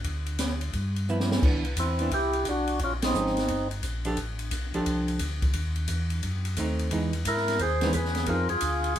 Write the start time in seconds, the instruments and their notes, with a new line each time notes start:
0.04 tonewheel organ D2, kick, ride
0.26 ride
0.39 snare, hi-hat pedal, ride
0.61 ride
0.73 tonewheel organ G2, kick, ride
0.96 ride
1.08 hollow-body jazz guitar F3 B3 E4, hi-hat pedal
1.20 snare
1.31 snare
1.42 tonewheel organ C2, hollow-body jazz guitar E3 B3 D4, kick, crash
1.65 ride
1.77 tonewheel organ E2 C4 E4, kick, hi-hat pedal, ride
1.99 hollow-body jazz guitar E3 B3 D4, ride
2.11 tonewheel organ C2 E4 G4, kick, ride
2.33 ride
2.45 tonewheel organ B1 D4, kick, hi-hat pedal, ride
2.50 tonewheel organ F#4
2.67 ride
2.79 tonewheel organ A#1, kick, ride
2.84 tonewheel organ C#4 F4
3.02 tonewheel organ C4 D#4, snare, ride
3.14 tonewheel organ G#1, hollow-body jazz guitar F3 G#3 C#4, hi-hat pedal
3.26 snare
3.37 snare, ride
3.48 tonewheel organ G1, kick, ride
3.71 ride
3.83 tonewheel organ A#1, kick, hi-hat pedal, ride
4.05 hollow-body jazz guitar F3 D4 G4 A4, ride
4.17 tonewheel organ A1, kick, ride
4.39 ride
4.51 tonewheel organ B1, kick, hi-hat pedal, ride
4.74 tonewheel organ B1, hollow-body jazz guitar F3 D4 G4 A4, ride
4.86 tonewheel organ C2, kick, ride
5.08 ride
5.19 tonewheel organ D2, kick, hi-hat pedal, ride
5.42 kick, ride
5.53 tonewheel organ D#2, kick, ride
5.76 ride
5.88 tonewheel organ E2, kick, hi-hat pedal, ride
6.10 ride
6.23 tonewheel organ F#2, kick, ride
6.45 ride
6.57 tonewheel organ D#2, hollow-body jazz guitar A3 C4 D#4, kick, hi-hat pedal, ride
6.79 ride
6.91 tonewheel organ E2, hollow-body jazz guitar E3 G#3 B3 D#4, kick, ride
7.13 ride
7.25 tonewheel organ G#2 E4 A#4, kick, hi-hat pedal, ride
7.37 snare
7.48 snare, ride
7.59 tonewheel organ D#2 G#4 C5, kick, ride
7.81 hollow-body jazz guitar E3 G#3 B3 D#4, snare, ride
7.93 tonewheel organ E2 G#4 B4, kick, hi-hat pedal, ride
8.05 snare
8.15 snare, ride
8.26 tonewheel organ F2 F4 A#4, hollow-body jazz guitar F3 C4 D#4 G#4, kick, ride
8.49 tonewheel organ F2 F4 G#4, ride
8.61 tonewheel organ D2, kick, hi-hat pedal, ride
8.84 ride
8.96 ride